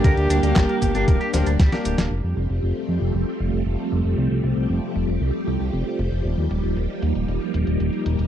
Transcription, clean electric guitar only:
X:1
M:4/4
L:1/16
Q:1/4=116
K:Fmix
V:1 name="Clean electric guitar"
B G D B, D B G D B G B D G, G G B, | z16 | z16 | z16 |]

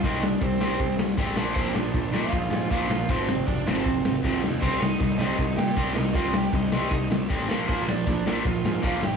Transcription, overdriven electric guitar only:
X:1
M:4/4
L:1/8
Q:1/4=157
K:Cm
V:1 name="Overdriven electric guitar"
[Ee] [Dd] [Cc]3 z3 | [Cc] [Dd]2 [Ff]3 [Ff]2 | [Cc]2 [Dd] [Cc]4 z | [Cc] [Ee]2 [Ee]2 [Gg]2 [Ee] |
[Ff] [Gg] [Ee]3 z3 | [B,B] [Dd]2 [Dd] [Ff]2 [Ff] [Gg] |]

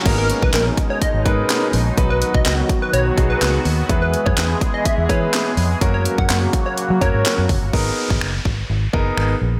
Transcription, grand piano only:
X:1
M:4/4
L:1/8
Q:1/4=125
K:G#m
V:1 name="Grand piano"
[A,B,DGA]2 z3 [B,DGAB]2 z | [F,B,DFB]2 z3 [F,B,DFG]2 z | [G,B,EGB]2 z3 [G,B,EGB]2 z | [F,A,CFA]2 z3 [F,A,CFA]2 z |
[B,DGA]2 z3 [B,DGA]2 z |]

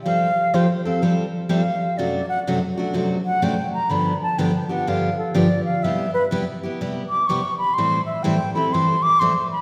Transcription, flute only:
X:1
M:4/4
L:1/8
Q:"Swing" 1/4=125
K:C
V:1 name="Flute"
f2 c f z2 f2 | d ^f z3 f g _b | b a g ^f =f A d f | e B z3 d' _d' b |
c' e g b c' d' c' b |]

